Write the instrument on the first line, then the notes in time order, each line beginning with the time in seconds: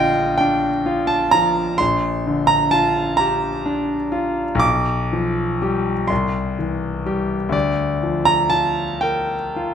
grand piano
Already playing: A#1 D3 F4 D#5 F5 G5
0.38 D4 G5
0.86 F4
1.07 A5
1.31 F3 A#5
1.78 A#1 C6
2.27 D3
2.47 A#5
2.71 F4 A5
3.17 G4 A#5
3.66 D4
4.12 F4
4.55 B1
4.60 D6
5.13 F3
5.62 G3 G4
6.08 C2 C6
6.59 E3
7.06 G3 G4
7.49 D2 D5
8.03 F3
8.25 A#5
8.50 F4 A5
9.01 A#4 G5
9.56 F4